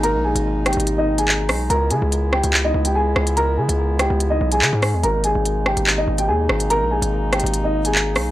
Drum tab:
HH |x--------x--------x-x-x-x--------x--------o-----|x-----x-----x--------x-----------x-----------x--|x--------x--------x-----x--------x--------o-----|x-----x-----x--------x-----------x-----------x--|
CP |------------------------------------x-----------|------------------------x-----------------------|------------------------------------x-----------|------------------------x-----------------------|
SD |------------------r-----------------------r-----|------------------r-----------------------r-----|------------------r-----------------------r-----|------------------r-----------------------r-----|

HH |x--------x--------x-x-x-x--------x--------o-----|
CP |------------------------------------x-----------|
SD |------------------r-----------------------r-----|